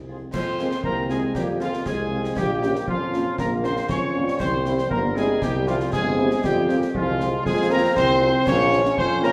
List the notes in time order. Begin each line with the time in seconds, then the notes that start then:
Already playing: C2
0.07 G#3 C4 F4 G#4 C5
0.33 F2 G#3 C4 C5 C6, concert bass drum, snare, crash
0.59 G#3 A#3 C4 F4, snare
0.71 snare
0.84 C2 A#3 C4 A#4 A#5, concert bass drum
1.09 G#3 C4 F4 G#4 G#5, snare
1.35 F2 G3 A#3 G4 G5, concert bass drum, snare
1.60 F3 G#3 C4 F4 F5, snare
1.73 snare
1.85 C2 G#3 G#4 G#5, concert bass drum, snare
2.11 G#3 C4 F4
2.24 snare
2.37 A#1 G3 A#3 G4 G5, concert bass drum, snare
2.62 A#3 C#4 F4, snare
2.75 snare
2.88 F2 F3 C#4 F4 F5, concert bass drum
3.12 A#3 C#4 F4, snare
3.38 A#1 A#3 A#4 A#5, concert bass drum, snare
3.64 A#3 C4 C#4 F4 C5 C6, snare
3.77 snare
3.89 F2 G#3 C#4 C#5 C#6, concert bass drum, snare
4.14 G3 A#3 C#4 F4
4.28 snare
4.39 C2 C4 C5 C6, concert bass drum, snare, crash
4.65 G3 C4 E4, snare
4.78 snare
4.89 G1 G3 A#3 A#4 A#5, concert bass drum
5.15 G3 G#3 C4 E4 G#4 G#5, snare
5.42 C2 G3 G4 G5, concert bass drum, snare
5.66 F3 G3 C4 E4 F4 F5, snare
5.80 snare
5.92 G1 G#3 C4 G#4 G#5, concert bass drum, snare
6.18 G3 C4 E4
6.31 snare
6.43 F2 G3 C4 G4 G5, concert bass drum, snare
6.68 G#3 A#3 C4 F4, snare
6.82 snare
6.93 C2 F3 G#3 F4 F5, concert bass drum
7.19 G#3 C4 F4, snare
7.45 F2 G#3 C4 G#4 G#5, concert bass drum, snare
7.70 G#3 A#3 C4 F4 A#4 A#5
7.96 C2 C4 C5 C6, concert bass drum, snare
8.21 G#3 C4 F4
8.46 A#1 A#3 C#4 C#5 C#6, concert bass drum, snare, crash
8.72 F3 C#4 F4, snare
8.85 snare
8.96 F2 C4 C5 C6, concert bass drum
9.22 F3 A#3 C#4 F4 A#4 A#5, snare